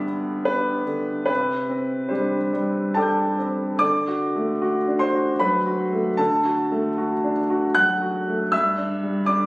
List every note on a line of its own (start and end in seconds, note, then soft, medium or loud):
0.00 1.25 G2 medium
0.00 0.86 D3 soft
0.00 0.07 B3 soft
0.00 0.47 D4 soft
0.00 0.47 G4 soft
0.00 0.47 D5 medium
0.00 1.32 E5 medium
0.07 0.45 B3 soft
0.45 0.83 B3 soft
0.45 0.84 D4 soft
0.45 0.84 G4 soft
0.45 1.24 B4 medium
0.86 1.28 D3 soft
1.26 3.77 C3 medium
1.26 2.10 B4 medium
1.69 2.36 C4 soft
2.09 2.49 G3 soft
2.09 2.50 D4 soft
2.09 2.50 G4 soft
2.09 2.95 C5 soft
2.53 2.95 G3 soft
2.94 3.35 G3 soft
2.94 3.35 D4 soft
2.94 3.36 G4 soft
2.94 3.77 A4 medium
2.94 3.78 G5 soft
2.94 3.81 A5 medium
2.99 3.77 D6 soft
2.99 3.80 G6 soft
3.39 3.81 C4 soft
3.79 6.14 D3 medium
3.79 4.96 D5 medium
3.79 5.00 D6 medium
4.08 4.51 F#4 soft
4.35 4.77 A3 soft
4.62 5.04 F#4 medium
4.88 5.30 D4 soft
4.99 5.37 C5 medium
4.99 5.39 C6 medium
5.14 5.56 F#4 soft
5.40 5.82 F#3 soft
5.40 6.15 B4 medium
5.40 6.19 B5 medium
5.66 6.08 F#4 soft
5.92 6.35 A3 soft
6.17 8.49 D3 medium
6.17 7.32 A4 medium
6.17 7.36 A5 medium
6.45 6.87 F#4 soft
6.72 7.13 A3 medium
6.98 7.39 F#4 soft
7.24 7.65 D4 soft
7.50 7.91 F#4 soft
7.75 8.17 F#3 soft
7.75 8.49 F#5 medium
7.75 8.52 F#6 medium
8.02 8.43 F#4 soft
8.27 8.53 A3 soft
8.52 9.46 G2 medium
8.52 9.25 E5 medium
8.52 9.28 E6 medium
8.78 9.18 D4 medium
9.03 9.43 G3 medium
9.26 9.46 D4 medium
9.26 9.46 D5 medium
9.26 9.46 D6 medium